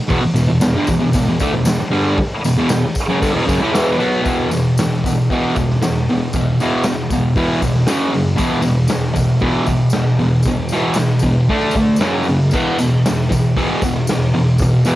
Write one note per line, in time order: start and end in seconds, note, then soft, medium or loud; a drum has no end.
0.08 0.20 E2 loud
0.08 0.22 B2 loud
0.08 kick loud
0.08 open hi-hat medium
0.08 tambourine soft
0.22 muted distorted electric guitar stroke medium
0.34 0.48 E2 medium
0.34 0.47 B2 medium
0.34 snare soft
0.34 open hi-hat medium
0.34 tambourine medium
0.48 0.60 E2 medium
0.48 0.60 B2 medium
0.61 0.75 E2 medium
0.61 0.75 B2 medium
0.61 snare loud
0.61 open hi-hat medium
0.61 tambourine loud
0.76 0.88 G2 medium
0.76 0.89 D3 medium
0.87 0.98 E2 medium
0.87 0.99 B2 medium
0.87 kick medium
0.87 open hi-hat medium
0.87 tambourine medium
1.00 1.13 E2 medium
1.00 1.13 B2 medium
1.13 1.27 E2 medium
1.13 1.27 B2 medium
1.13 kick loud
1.13 open hi-hat medium
1.13 tambourine medium
1.28 1.41 E2 medium
1.28 1.40 B2 medium
1.40 1.53 D3 loud
1.40 1.53 A3 loud
1.40 kick medium
1.40 open hi-hat medium
1.40 tambourine medium
1.53 1.64 E2 medium
1.53 1.65 B2 medium
1.65 1.79 E2 medium
1.65 1.79 B2 medium
1.65 snare loud
1.65 open hi-hat medium
1.65 tambourine loud
1.80 muted distorted electric guitar stroke medium
1.91 2.17 G2 loud
1.91 2.17 D3 loud
1.91 2.17 G3 medium
1.91 open hi-hat medium
2.18 muted distorted electric guitar stroke medium
2.18 kick loud
2.18 open hi-hat medium
2.44 2.55 E2 medium
2.44 2.57 B2 medium
2.44 open hi-hat medium
2.44 tambourine medium
2.57 2.69 E2 loud
2.57 2.69 B2 loud
2.69 2.83 E2 medium
2.69 2.83 B2 medium
2.69 snare loud
2.69 open hi-hat medium
2.69 tambourine loud
2.85 muted distorted electric guitar stroke medium
2.95 kick medium
2.95 open hi-hat medium
2.95 tambourine medium
3.09 3.20 F#2 medium
3.09 3.22 C#3 loud
3.20 3.32 G2 medium
3.20 3.34 D3 loud
3.20 kick medium
3.20 open hi-hat medium
3.20 tambourine medium
3.32 3.46 E2 loud
3.32 3.47 B2 loud
3.46 3.59 F#2 loud
3.46 3.60 C#3 loud
3.46 kick medium
3.46 open hi-hat medium
3.46 tambourine medium
3.60 3.73 A2 medium
3.60 3.73 E3 loud
3.60 snare soft
3.72 3.98 E2 loud
3.72 3.98 B2 loud
3.72 3.99 E3 loud
3.72 snare loud
3.72 open hi-hat medium
3.72 tambourine loud
3.99 4.21 B2 medium
3.99 4.23 F#3 loud
3.99 4.25 B3 loud
3.99 open hi-hat medium
3.99 tambourine soft
4.22 4.48 E2 medium
4.22 4.49 B2 loud
4.22 4.49 E3 loud
4.22 open hi-hat medium
4.22 tambourine medium
4.26 kick loud
4.51 4.75 E2 medium
4.51 4.76 B2 medium
4.51 snare soft
4.51 open hi-hat medium
4.51 tambourine medium
4.78 5.02 E2 medium
4.78 5.02 B2 loud
4.78 snare loud
4.78 open hi-hat medium
4.78 tambourine loud
5.04 5.28 E2 medium
5.04 5.28 B2 medium
5.04 kick medium
5.04 open hi-hat medium
5.04 tambourine medium
5.30 5.54 E2 medium
5.30 5.55 B2 loud
5.30 5.55 E3 loud
5.30 kick medium
5.30 open hi-hat medium
5.30 tambourine soft
5.56 5.79 E2 medium
5.56 5.79 B2 medium
5.56 kick loud
5.56 open hi-hat medium
5.56 tambourine medium
5.70 snare soft
5.82 6.05 E2 medium
5.82 6.05 B2 medium
5.82 snare loud
5.82 open hi-hat medium
5.82 tambourine medium
6.09 6.32 E2 medium
6.09 6.32 B2 medium
6.09 open hi-hat medium
6.33 6.57 E2 medium
6.33 6.58 B2 medium
6.33 kick loud
6.33 open hi-hat medium
6.33 tambourine medium
6.60 6.84 E2 medium
6.60 6.85 B2 medium
6.60 6.85 E3 loud
6.60 snare soft
6.60 open hi-hat medium
6.60 tambourine medium
6.84 7.09 E2 medium
6.84 7.09 B2 medium
6.84 snare loud
6.84 open hi-hat medium
6.84 tambourine medium
7.10 7.35 E2 medium
7.10 7.35 B2 medium
7.10 kick medium
7.10 open hi-hat medium
7.10 tambourine medium
7.36 7.61 E2 loud
7.36 7.61 B2 medium
7.36 7.61 E3 loud
7.36 kick medium
7.36 open hi-hat medium
7.36 tambourine soft
7.61 7.86 E2 medium
7.61 7.86 B2 medium
7.61 kick medium
7.61 open hi-hat medium
7.61 tambourine medium
7.75 snare soft
7.87 8.12 F#2 medium
7.87 8.13 C#3 loud
7.87 8.13 F#3 loud
7.87 snare loud
7.87 open hi-hat medium
7.87 tambourine loud
8.13 8.36 F#2 medium
8.13 8.36 C#3 medium
8.13 open hi-hat medium
8.36 8.61 E2 medium
8.36 8.61 B2 loud
8.36 8.63 E3 loud
8.36 kick loud
8.36 open hi-hat medium
8.36 tambourine medium
8.62 8.87 E2 medium
8.62 8.87 B2 medium
8.62 open hi-hat medium
8.62 tambourine medium
8.66 snare soft
8.88 9.12 E2 medium
8.88 9.13 B2 medium
8.88 snare loud
8.88 open hi-hat medium
8.88 tambourine medium
9.14 9.39 E2 medium
9.14 9.39 B2 medium
9.14 kick medium
9.14 open hi-hat medium
9.14 tambourine medium
9.40 9.66 E2 medium
9.40 9.66 B2 loud
9.40 9.66 E3 loud
9.40 kick medium
9.40 open hi-hat medium
9.40 tambourine soft
9.66 9.91 E2 medium
9.66 9.91 B2 medium
9.66 kick medium
9.66 open hi-hat medium
9.66 tambourine medium
9.90 10.17 E2 medium
9.90 10.17 B2 medium
9.90 snare loud
9.90 open hi-hat medium
9.90 tambourine medium
10.19 10.43 E2 medium
10.19 10.43 B2 medium
10.19 open hi-hat medium
10.43 kick loud
10.43 open hi-hat medium
10.43 tambourine medium
10.47 10.70 E2 medium
10.47 10.70 B2 medium
10.69 10.96 E2 medium
10.69 snare soft
10.69 open hi-hat medium
10.69 tambourine medium
10.73 10.96 B2 medium
10.73 10.97 E3 loud
10.94 11.21 E2 medium
10.94 11.21 B2 medium
10.94 snare loud
10.94 open hi-hat medium
10.94 tambourine medium
11.19 11.46 E2 medium
11.19 kick medium
11.19 open hi-hat medium
11.19 tambourine medium
11.24 11.47 B2 medium
11.49 11.74 D3 medium
11.49 11.74 A3 loud
11.49 11.74 D4 loud
11.49 kick medium
11.49 open hi-hat medium
11.71 open hi-hat medium
11.71 tambourine medium
11.75 11.99 D3 medium
11.75 11.99 A3 medium
11.75 kick medium
11.96 12.25 F#2 medium
11.96 tambourine loud
12.01 12.25 C#3 loud
12.01 12.26 F#3 loud
12.01 snare loud
12.01 open hi-hat medium
12.23 tambourine soft
12.28 12.51 F#2 medium
12.28 12.51 C#3 medium
12.28 open hi-hat medium
12.51 12.77 E2 medium
12.51 12.78 B2 medium
12.51 kick loud
12.51 tambourine medium
12.51 crash loud
12.55 12.78 E3 loud
12.79 13.02 E2 medium
12.79 13.02 B2 medium
12.79 snare soft
12.79 open hi-hat medium
12.79 tambourine medium
13.06 13.28 E2 medium
13.06 13.28 B2 medium
13.06 snare loud
13.06 open hi-hat medium
13.06 tambourine medium
13.29 13.53 E2 medium
13.29 13.53 B2 medium
13.29 kick medium
13.29 open hi-hat medium
13.29 tambourine medium
13.56 13.80 E2 medium
13.56 13.80 B2 loud
13.56 13.81 E3 loud
13.56 kick medium
13.56 open hi-hat medium
13.56 tambourine soft
13.82 14.06 E2 medium
13.82 14.06 B2 medium
13.82 kick medium
13.82 open hi-hat medium
13.82 tambourine medium
13.95 snare soft
14.07 14.32 E2 medium
14.07 14.32 B2 medium
14.07 snare loud
14.07 open hi-hat medium
14.07 tambourine medium
14.34 14.57 E2 medium
14.34 14.57 B2 medium
14.34 open hi-hat medium
14.58 14.83 E2 medium
14.58 14.84 B2 loud
14.58 kick loud
14.58 open hi-hat medium
14.58 tambourine medium
14.84 14.95 E2 medium
14.84 14.95 B2 loud
14.84 14.95 E3 loud
14.84 open hi-hat medium
14.84 tambourine medium